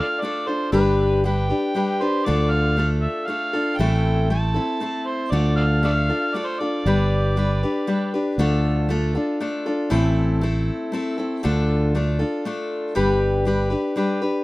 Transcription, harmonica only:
0.00 0.23 F5 medium
0.21 0.49 D5 loud
0.48 0.72 C5 medium
0.72 1.21 B4 medium
1.26 2.03 G5 medium
2.02 2.27 C5 medium
2.25 2.53 D5 medium
2.51 2.87 F5 loud
3.02 3.28 E5 medium
3.27 3.79 F5 medium
3.78 4.30 G5 medium
4.30 5.09 A5 medium
5.07 5.33 C5 medium
5.31 5.56 D5 medium
5.57 5.65 A4 medium
5.57 5.63 D5 medium
5.57 5.81 F5 medium
5.85 5.93 A4 medium
5.85 5.91 D5 medium
5.85 6.37 F5 medium
6.35 6.48 D5 medium
6.46 6.61 C5 medium
6.59 8.13 D5 medium

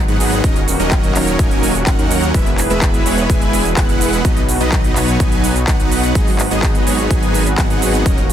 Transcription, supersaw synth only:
0.08 0.17 F#3 medium
0.08 0.17 B3 medium
0.08 0.17 D#4 medium
0.08 0.17 G#4 medium
0.08 0.17 F#5 medium
0.20 0.41 F#3 loud
0.20 0.41 B3 medium
0.20 0.41 D#4 medium
0.20 0.41 G#4 medium
0.20 0.41 F#5 loud
0.44 0.60 F#3 medium
0.44 0.60 C#4 medium
0.44 0.60 D#4 medium
0.44 0.60 A#4 medium
0.44 0.60 D#5 medium
0.80 1.13 F#3 medium
0.80 1.13 C#4 medium
0.80 1.13 D#4 medium
0.80 1.13 A#4 medium
0.80 1.13 D#5 medium
1.15 1.36 F#3 medium
1.15 1.36 C#4 medium
1.15 1.36 D#4 medium
1.15 1.36 A#4 medium
1.15 1.36 C#5 medium
1.39 1.72 F#3 medium
1.39 1.72 C#4 medium
1.39 1.72 D#4 medium
1.39 1.72 A#4 medium
1.39 1.72 G#5 loud
1.87 1.96 F#3 medium
1.87 1.96 C#4 medium
1.87 1.96 D#4 medium
1.87 1.96 A#4 medium
1.87 1.96 F#5 loud
1.99 2.32 F#3 medium
1.99 2.32 C#4 medium
1.99 2.32 D#4 medium
1.99 2.32 A#4 medium
1.99 2.32 F#5 medium
2.34 2.50 G#3 medium
2.34 2.50 B3 medium
2.34 2.50 E4 medium
2.34 2.50 B4 medium
2.34 2.50 E5 medium
2.70 3.03 G#3 medium
2.70 3.03 B3 medium
2.70 3.03 E4 medium
2.70 3.03 B4 medium
2.70 3.03 E5 medium
3.06 3.27 G#3 medium
3.06 3.27 B3 medium
3.06 3.27 E4 medium
3.06 3.27 B4 medium
3.06 3.27 C#5 medium
3.30 3.62 G#3 medium
3.30 3.62 B3 medium
3.30 3.62 E4 medium
3.30 3.63 B4 medium
3.30 3.62 G#5 loud
3.77 3.86 G#3 loud
3.77 3.86 B3 medium
3.77 3.86 E4 medium
3.77 3.86 B4 medium
3.77 3.86 F#5 loud
3.89 4.22 G#3 medium
3.89 4.22 B3 medium
3.89 4.22 E4 medium
3.89 4.22 B4 medium
3.89 4.22 F#5 medium
4.25 4.41 F#3 medium
4.25 4.41 B3 medium
4.25 4.41 D#4 medium
4.25 4.41 B4 medium
4.25 4.41 D#5 medium
4.61 4.93 F#3 medium
4.61 4.93 B3 medium
4.61 4.93 D#4 medium
4.61 4.93 B4 medium
4.61 4.93 D#5 medium
4.96 5.17 F#3 medium
4.96 5.17 B3 medium
4.96 5.17 D#4 medium
4.96 5.17 B4 medium
4.96 5.17 C#5 medium
5.20 5.53 F#3 medium
5.20 5.53 B3 medium
5.20 5.53 D#4 medium
5.20 5.53 B4 medium
5.20 5.53 G#5 loud
5.68 5.77 F#3 loud
5.68 5.77 B3 medium
5.68 5.77 D#4 medium
5.68 5.77 B4 loud
5.68 5.77 F#5 loud
5.80 6.12 F#3 medium
5.80 6.12 B3 medium
5.80 6.12 D#4 medium
5.80 6.12 B4 medium
5.80 6.12 F#5 medium
6.15 6.31 F#3 medium
6.15 6.31 B3 medium
6.15 6.31 D#4 medium
6.15 6.31 G#4 medium
6.15 6.31 D#5 medium
6.51 6.84 F#3 medium
6.51 6.84 B3 medium
6.51 6.84 D#4 medium
6.51 6.84 G#4 medium
6.51 6.84 D#5 medium
6.87 7.08 F#3 medium
6.87 7.08 B3 medium
6.87 7.08 D#4 medium
6.87 7.08 G#4 medium
6.87 7.08 C#5 medium
7.11 7.43 F#3 medium
7.11 7.43 B3 medium
7.11 7.43 D#4 medium
7.11 7.43 G#4 medium
7.11 7.43 G#5 loud
7.58 7.67 F#3 loud
7.58 7.67 B3 medium
7.58 7.67 D#4 medium
7.58 7.67 G#4 medium
7.58 7.67 F#5 loud
7.70 8.03 F#3 medium
7.70 8.03 B3 medium
7.70 8.03 D#4 medium
7.70 8.03 G#4 medium
7.70 8.03 F#5 medium
8.06 8.22 F#3 medium
8.06 8.22 C#4 medium
8.06 8.22 D#4 medium
8.06 8.22 A#4 medium
8.06 8.22 D#5 medium

